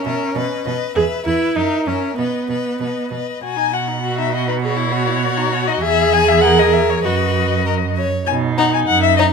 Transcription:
Already playing: viola C#4
0.04 cello B2, violin A#4 E5
0.34 cello B2, violin B4 D#5
0.65 cello B2, violin B4 D#5
0.95 cello E2, viola G#4, violin B4 E5
1.25 cello E2, viola E4, violin B4 E5
1.56 cello F#2, viola D#4, violin A#4 E5
1.86 cello F#2, viola C#4, violin A#4 E5
2.18 cello B2, viola B3, violin B4 D#5
2.49 cello B2, violin B4 D#5
2.80 cello B2, violin B4 D#5
3.11 cello B2, violin B4 D#5
3.41 cello B2, violin F#4 G#5
3.57 violin D#4
3.72 violin F#4 F#5
3.88 violin D#4
4.03 violin F#4, viola F#4
4.18 violin D#4 E5
4.34 violin F#4 D#5
4.48 violin D#4 B4
4.62 violin F#4 C#5, viola G#4
4.77 violin E4
4.92 violin F#4, viola F#4
5.08 violin E4
5.23 violin F#4
5.37 violin D#4
5.53 violin F#4
5.67 violin D#4 D#5
5.82 cello E2, viola G#4, violin G#4 E5
6.13 violin G#5
6.28 violin E5
6.41 violin A#4 F#5
6.59 violin D#5
6.73 violin E5
6.90 violin C#5
7.04 cello F#2, viola F#4, violin B4 D#5
7.66 violin A#4
7.97 violin C#5
8.27 cello B2, viola D#4, violin G#5
8.58 violin D#4 F#5
8.74 violin G#5
8.88 cello F#2, violin F#5
9.03 violin E5
9.17 violin D#4 D#5

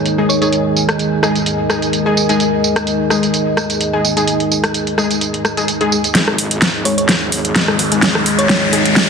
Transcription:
Already playing: analog synth pad D#3 G#3 G#4 A#4, ambient pad D#4 G#4 D#5 G#5
0.06 closed hi-hat, tambourine
0.18 synth stab G#3 D#4 G#4
0.29 synth pluck C#5, tambourine
0.42 synth stab G#3 D#4 G#4, synth pluck C#5, closed hi-hat, tambourine
0.53 closed hi-hat, tambourine
0.77 tambourine
0.89 cross-stick, closed hi-hat, tambourine
0.99 closed hi-hat, tambourine
1.23 synth stab G#3 D#4 G#4, cross-stick, tambourine
1.36 closed hi-hat, tambourine
1.46 closed hi-hat, tambourine
1.70 synth stab G#3 D#4 G#4, cross-stick, tambourine
1.82 closed hi-hat, tambourine
1.93 closed hi-hat, tambourine
2.06 synth stab G#3 D#4 G#4
2.17 tambourine
2.29 synth stab G#3 D#4 G#4, closed hi-hat, tambourine
2.40 closed hi-hat, tambourine
2.64 tambourine
2.76 cross-stick, closed hi-hat, tambourine
2.87 closed hi-hat, tambourine
3.10 synth stab G#3 D#4 G#4, cross-stick, tambourine
3.23 closed hi-hat, tambourine
3.34 closed hi-hat, tambourine
3.57 cross-stick, tambourine
3.70 closed hi-hat, tambourine
3.81 closed hi-hat, tambourine
3.93 synth stab G#3 D#4 G#4
4.05 tambourine
4.17 synth stab G#3 D#4 G#4, closed hi-hat, tambourine
4.28 closed hi-hat, tambourine
4.40 closed hi-hat
4.52 tambourine
4.64 cross-stick, closed hi-hat, tambourine
4.74 closed hi-hat, tambourine
4.87 closed hi-hat
4.98 synth stab G#3 D#4 G#4, cross-stick, tambourine
5.11 closed hi-hat, tambourine
5.21 closed hi-hat, tambourine
5.34 closed hi-hat
5.45 cross-stick, tambourine
5.57 synth stab G#3 D#4 G#4, closed hi-hat, tambourine
5.68 closed hi-hat, tambourine
5.81 synth stab G#3 D#4 G#4, closed hi-hat
5.92 tambourine
6.04 closed hi-hat, tambourine
6.15 wobble bass G#1, analog synth pad D#3 G#3 G#4 D#5, snare, closed hi-hat, riser
6.28 wobble bass G#1, cross-stick
6.38 open hi-hat
6.51 closed hi-hat
6.62 snare, closed hi-hat
6.74 wobble bass G#1
6.85 synth stab G#3 D#4 G#4, synth pluck C#5, open hi-hat
6.98 wobble bass G#1, synth pluck C#5, closed hi-hat
7.09 snare, closed hi-hat
7.32 wobble bass G#1, open hi-hat
7.45 closed hi-hat
7.56 snare, closed hi-hat
7.68 wobble bass G#1, synth stab G#3 D#4 G#4, cross-stick
7.79 open hi-hat
7.92 wobble bass G#1, synth stab G#3 D#4 G#4, closed hi-hat
8.02 snare, closed hi-hat
8.15 cross-stick
8.26 open hi-hat
8.39 wobble bass G#1, synth pluck C#5, closed hi-hat
8.49 wobble bass G#1, snare, closed hi-hat
8.73 synth stab G#3 D#4 G#4, open hi-hat
8.85 wobble bass G#1, closed hi-hat
8.96 snare, closed hi-hat

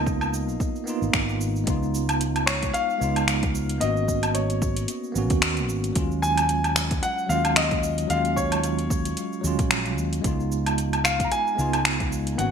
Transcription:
Already playing: fretless electric bass C#2, tine electric piano A#3 B3 D#4 F4, grand piano D#5
0.07 kick, cabasa
0.21 cabasa, low woodblock
0.34 cabasa
0.49 cabasa
0.60 kick, cabasa
0.76 cabasa
0.84 tine electric piano A#3 B3 D#4, cabasa
0.90 tine electric piano F4
1.02 fretless electric bass G#1, cabasa
1.13 fretless electric bass G#1, finger snap, kick, cabasa
1.29 cabasa
1.41 cabasa
1.56 cabasa
1.64 fretless electric bass C#2, tine electric piano G#3 B3, kick, closed hi-hat, cabasa
1.68 tine electric piano D#4 F4
1.83 cabasa
1.94 cabasa
2.09 closed hi-hat, cabasa, low woodblock
2.21 closed hi-hat, cabasa
2.36 closed hi-hat, cabasa, low woodblock
2.46 grand piano C#5, finger snap, cabasa
2.63 kick, closed hi-hat, cabasa
2.74 grand piano F5, closed hi-hat, cabasa
2.90 cabasa
2.98 fretless electric bass C#2, tine electric piano G#3 B3 D#4, cabasa
3.04 tine electric piano F4
3.16 closed hi-hat, cabasa, low woodblock
3.28 finger snap, closed hi-hat, cabasa
3.43 kick, closed hi-hat, cabasa
3.55 cabasa
3.69 closed hi-hat, cabasa
3.78 fretless electric bass G#1, tine electric piano A#3 B3 C#4, grand piano D#5, closed hi-hat, cabasa
3.84 tine electric piano F#4
3.97 cabasa
4.08 kick, cabasa
4.23 closed hi-hat, cabasa, low woodblock
4.34 grand piano C#5, closed hi-hat, cabasa
4.50 closed hi-hat, cabasa
4.62 kick, cabasa
4.76 closed hi-hat, cabasa
4.88 closed hi-hat, cabasa
5.04 cabasa
5.12 fretless electric bass G#1, tine electric piano A#3 B3 C#4, cabasa
5.18 tine electric piano F#4
5.30 fretless electric bass D#2, kick, closed hi-hat, cabasa
5.42 finger snap, closed hi-hat, cabasa
5.57 closed hi-hat, cabasa
5.69 fretless electric bass G#1, cabasa
5.84 closed hi-hat, cabasa
5.93 fretless electric bass D#2, tine electric piano F#3 G#3 C#4, kick, closed hi-hat, cabasa
5.98 tine electric piano F4
6.11 cabasa
6.22 grand piano G#5, cabasa
6.37 closed hi-hat, cabasa, low woodblock
6.49 closed hi-hat, cabasa
6.64 closed hi-hat, cabasa, low woodblock
6.76 finger snap, cabasa
6.91 kick, closed hi-hat, cabasa
7.03 grand piano F#5, closed hi-hat, cabasa
7.18 cabasa
7.26 fretless electric bass D#2, tine electric piano F#3 G#3 C#4, grand piano F5, cabasa
7.32 tine electric piano F4
7.45 closed hi-hat, cabasa, low woodblock
7.56 grand piano D#5, finger snap, closed hi-hat, cabasa
7.71 kick, closed hi-hat, cabasa
7.83 cabasa
7.98 closed hi-hat, cabasa
8.07 fretless electric bass D#2, tine electric piano F#3 G#3 C#4, grand piano F5, closed hi-hat, cabasa
8.13 tine electric piano F4
8.25 closed hi-hat, cabasa
8.36 grand piano C#5, kick, cabasa
8.52 closed hi-hat, cabasa, low woodblock
8.64 closed hi-hat, cabasa
8.79 closed hi-hat, cabasa
8.90 kick, cabasa
9.05 closed hi-hat, cabasa
9.17 closed hi-hat, cabasa
9.33 cabasa
9.41 fretless electric bass D#2, tine electric piano F#3 G#3 C#4, cabasa
9.47 tine electric piano F4
9.59 fretless electric bass A#1, kick, closed hi-hat, cabasa
9.71 finger snap, closed hi-hat, cabasa
9.86 closed hi-hat, cabasa
9.98 fretless electric bass D#2, cabasa
10.13 closed hi-hat, cabasa
10.22 fretless electric bass C#2, tine electric piano G#3 B3 D#4, kick, closed hi-hat, cabasa
10.27 tine electric piano F4
10.40 cabasa
10.52 cabasa
10.66 closed hi-hat, cabasa, low woodblock
10.78 closed hi-hat, cabasa
10.93 closed hi-hat, cabasa, low woodblock
11.04 grand piano F5, finger snap, cabasa
11.20 kick, closed hi-hat, cabasa
11.25 grand piano A#5
11.32 grand piano G#5, closed hi-hat, cabasa
11.47 cabasa
11.55 fretless electric bass C#2, tine electric piano G#3 B3 D#4, cabasa
11.61 tine electric piano F4
11.73 closed hi-hat, cabasa, low woodblock
11.85 finger snap, closed hi-hat, cabasa
12.00 kick, closed hi-hat, cabasa
12.12 cabasa
12.27 closed hi-hat, cabasa
12.35 fretless electric bass G#1, tine electric piano A#3 B3, grand piano F#5, closed hi-hat, cabasa
12.39 tine electric piano C#4 F#4

